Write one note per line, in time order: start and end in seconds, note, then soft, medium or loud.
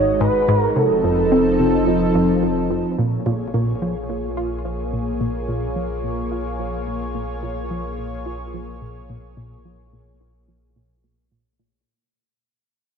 0.00 0.73 G#1 medium
0.00 0.12 G#2 medium
0.00 0.72 G#3 medium
0.00 0.72 D#4 medium
0.00 0.72 F#4 medium
0.00 0.20 C#5 loud
0.00 0.75 A#5 loud
0.20 0.28 G#2 loud
0.20 0.58 B4 loud
0.48 0.67 G#2 loud
0.58 0.77 A#4 loud
0.76 2.96 F1 medium
0.76 0.89 C3 medium
0.76 2.96 F3 medium
0.76 2.96 C4 medium
0.76 2.96 D#4 medium
0.76 2.70 A4 loud
0.76 2.96 A4 loud
1.04 1.23 F2 medium
1.32 1.44 C4 medium
1.59 1.78 C3 medium
1.87 2.06 F2 medium
2.15 2.34 F2 loud
2.43 2.62 F2 medium
2.71 2.83 F2 medium
2.98 11.85 A#1 medium
2.98 3.17 A#2 medium
2.98 11.83 A#3 medium
2.98 11.83 F4 medium
2.98 11.83 G#4 medium
2.98 11.83 C#5 medium
3.26 3.34 A#2 medium
3.54 3.73 A#2 medium
3.82 3.94 F3 medium
4.09 4.28 A#2 medium
4.37 4.50 F4 medium
4.65 4.84 F3 medium
4.93 5.12 A#2 medium
5.21 5.28 A#2 medium
5.48 5.67 A#2 loud
5.76 5.89 F3 medium
6.04 6.23 A#2 medium
6.32 6.44 F4 medium
6.59 6.78 F3 medium
6.87 7.06 A#2 medium
7.15 7.22 A#2 medium
7.43 7.62 A#2 medium
7.71 7.83 F3 medium
7.98 8.17 A#2 medium
8.26 8.39 F4 medium
8.54 8.73 F3 medium
8.82 9.01 A#2 medium
9.10 9.17 A#2 medium
9.37 9.56 A#2 medium
9.65 9.78 F3 medium
9.93 10.12 A#2 medium
10.21 10.33 F4 medium
10.48 10.67 F3 medium
10.76 10.95 A#2 medium
11.04 11.17 A#2 medium
11.32 11.44 A#2 medium
11.59 11.72 A#2 medium